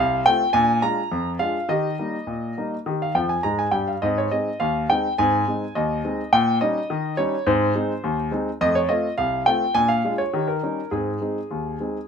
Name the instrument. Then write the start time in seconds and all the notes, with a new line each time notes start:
grand piano
Already playing: C2 F5
0.26 A3 C4 F4 G5
0.53 A#2 D4 G#5
0.82 G#3 D4 F4 A#5
1.12 F2
1.39 G#3 D4 F4 F5
1.69 D#3 G4 D#5
1.99 G3 A#3 D#4
2.27 A#2
2.57 G3 A#3 D#4
2.86 D#3 G4
3.02 F5
3.15 F2 F3 G5
3.29 G#5
3.43 G#2 G#3 A#5
3.59 G#5
3.72 G2 G3 G5
3.88 F5
4.02 G#2 C4 D#5
4.18 C#5
4.31 G#3 C4 D#4 D#5
4.60 D#2 F5
4.90 G#3 C4 D#4 G5
5.18 G#2 C4 G#5
5.48 G#3 C4 D#4
5.75 D#2 D#5
6.05 G#3 C4 D#4
6.33 A#2 G5
6.61 G3 C#4 D#4 D#5
6.90 D#3
7.17 G3 C#4 D#4 C#5
7.47 G#2 C4 C5
7.75 G#3 C4 D#4
8.04 D#2
8.31 G#3 C4 D#4
8.61 F2 A3 D#5
8.75 C#5
8.89 A3 C4 F4 D#5
9.18 C2 F5
9.46 A3 C4 F4 G5
9.75 A#2 D4 G#5
9.88 F5
10.04 G#3 D4 F4
10.18 C#5
10.34 D#3 G4
10.48 A#4
10.62 G3 C#4 D#4
10.91 G#2 C4 G#4
11.21 G#3 C4 D#4
11.51 D#2
11.80 G#3 C4 D#4